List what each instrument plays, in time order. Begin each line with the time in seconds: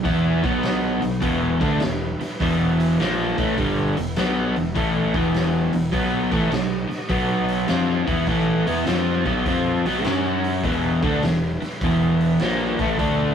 Already playing: tonewheel organ F#3 B3 D#4
0.04 fingered electric bass E2, overdriven electric guitar E3 B3 E4, kick, open hi-hat
0.43 fingered electric bass B1, overdriven electric guitar B2 F#3 B3, kick, open hi-hat
0.63 snare, open hi-hat
1.01 fingered electric bass B1, overdriven electric guitar B2 F#3, open hi-hat
1.21 fingered electric bass E1, overdriven electric guitar E2 B2 E3, tonewheel organ B3 E4 B4, kick, open hi-hat
1.60 fingered electric bass D2, overdriven electric guitar D3 A3 D4, kick, open hi-hat
1.80 fingered electric bass E1, overdriven electric guitar E2 B2, snare, open hi-hat
2.20 muted fingered electric bass stroke, muted overdriven electric guitar stroke, snare, open hi-hat
2.40 fingered electric bass E1, overdriven electric guitar E2 B2 E3, kick, open hi-hat
2.80 open hi-hat
2.99 fingered electric bass A#1, overdriven electric guitar A#2 F3 A#3, snare, open hi-hat
3.38 fingered electric bass A1, overdriven electric guitar A2 E3 A3, kick, open hi-hat
3.56 fingered electric bass G1, overdriven electric guitar G2 D3 G3, tonewheel organ B3 E4, kick, open hi-hat
3.97 fingered electric bass E1, overdriven electric guitar E2 B2, open hi-hat
4.16 fingered electric bass B1, overdriven electric guitar B2 F#3 B3, snare, open hi-hat
4.56 fingered electric bass E1, overdriven electric guitar E2 B2, open hi-hat
4.75 fingered electric bass A1, overdriven electric guitar A2 E3 A3, kick, open hi-hat
5.14 fingered electric bass E1, overdriven electric guitar E2 B2 E3, kick, open hi-hat
5.34 snare, open hi-hat
5.73 fingered electric bass E1, overdriven electric guitar E2 B2, open hi-hat
5.92 fingered electric bass B1, overdriven electric guitar B2 F#3 B3, tonewheel organ B3 D#4 F#4 D#5, kick, open hi-hat
6.32 fingered electric bass A1, overdriven electric guitar A2 E3 A3, kick, open hi-hat
6.52 fingered electric bass B1, overdriven electric guitar B2 F#3, snare, open hi-hat
6.89 muted overdriven electric guitar stroke, muted fingered electric bass stroke, snare, open hi-hat
7.09 fingered electric bass B1, overdriven electric guitar B2 F#3 B3, kick, open hi-hat
7.48 open hi-hat
7.68 fingered electric bass F2, overdriven electric guitar F3 C4 F4, snare, open hi-hat
8.06 fingered electric bass E2, overdriven electric guitar E3 B3 E4, kick, open hi-hat
8.27 fingered electric bass A1, overdriven electric guitar A2 E3 A3, tonewheel organ B3 D#4 F#4 D#5, kick, open hi-hat
8.67 fingered electric bass E2, overdriven electric guitar E3 B3 E4, open hi-hat
8.86 fingered electric bass F2, overdriven electric guitar F3 C4 F4, snare, open hi-hat
9.26 fingered electric bass B1, overdriven electric guitar B2 F#3 B3, kick, open hi-hat
9.46 fingered electric bass F2, overdriven electric guitar F3 C4 F4, kick, open hi-hat
9.85 fingered electric bass B1, overdriven electric guitar B2 F#3 B3, open hi-hat
10.03 fingered electric bass F#2, overdriven electric guitar F#3 C#4 F#4, tonewheel organ C#4 F#4 C#5, snare, open hi-hat
10.44 open hi-hat
10.64 fingered electric bass E1, overdriven electric guitar E2 B2 E3, tonewheel organ B3 E4 B4, kick, open hi-hat
11.03 fingered electric bass D2, overdriven electric guitar D3 A3 D4, kick, open hi-hat
11.23 fingered electric bass E1, overdriven electric guitar E2 B2, snare, open hi-hat
11.62 muted overdriven electric guitar stroke, muted fingered electric bass stroke, snare, open hi-hat
11.81 fingered electric bass E1, overdriven electric guitar E2 B2 E3, kick, open hi-hat
12.21 open hi-hat
12.40 fingered electric bass A#1, overdriven electric guitar A#2 F3 A#3, snare, open hi-hat
12.79 fingered electric bass A1, overdriven electric guitar A2 E3 A3, kick, open hi-hat
12.99 fingered electric bass D2, overdriven electric guitar D3 A3 D4, tonewheel organ B3 E4, kick, open hi-hat